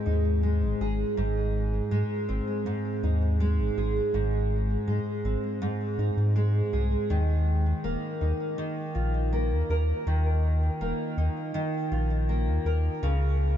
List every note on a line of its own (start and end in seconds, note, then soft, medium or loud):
0.00 1.16 G#2 medium
0.00 0.42 G#3 medium
0.00 2.27 C4 medium
0.00 0.80 G#4 medium
0.06 0.63 D#2 medium
0.06 3.03 D#4 medium
0.43 1.90 G#3 medium
0.62 0.74 G#1 medium
0.80 1.04 G#1 medium
0.80 3.76 G#4 medium
1.17 1.81 G#1 loud
1.17 2.65 G#2 medium
1.91 2.03 G#2 medium
1.91 3.39 G#3 medium
2.29 2.41 G#1 medium
2.29 5.24 C4 medium
2.66 4.13 G#2 medium
3.03 3.60 D#2 medium
3.03 5.99 D#4 medium
3.40 4.86 G#3 medium
3.58 3.70 G#1 medium
3.77 4.00 G#1 medium
3.77 6.72 G#4 medium
4.14 4.77 G#1 loud
4.14 5.60 G#2 medium
4.88 5.00 G#2 medium
4.88 6.34 G#3 medium
5.24 5.36 G#1 loud
5.24 7.17 C4 medium
5.62 7.17 G#2 medium
5.98 6.10 G#2 loud
5.98 8.21 D#4 medium
6.17 6.62 G#2 loud
6.36 7.17 G#3 medium
6.73 6.97 C2 medium
6.73 7.17 G#4 medium
7.10 7.73 D#2 loud
7.10 8.57 D#3 medium
7.84 7.96 D#1 medium
7.84 9.31 A#3 medium
8.21 8.33 D#2 medium
8.21 11.17 D#4 medium
8.58 10.06 D#3 medium
8.95 9.53 A#1 medium
8.95 11.91 F4 medium
9.33 10.80 A#3 medium
9.51 9.63 D#2 medium
9.69 9.93 D#2 medium
9.69 12.65 A#4 medium
10.06 10.70 D#2 loud
10.06 11.53 D#3 medium
10.81 10.92 D#1 medium
10.81 12.28 A#3 medium
11.17 11.29 D#2 medium
11.17 13.10 D#4 medium
11.54 13.02 D#3 medium
11.91 12.48 A#1 loud
11.91 13.57 F4 medium
12.29 13.10 A#3 medium
12.47 12.59 D#2 medium
12.65 12.89 D#2 medium
12.65 13.10 A#4 medium
13.02 13.57 C#2 loud
13.02 13.57 C#3 medium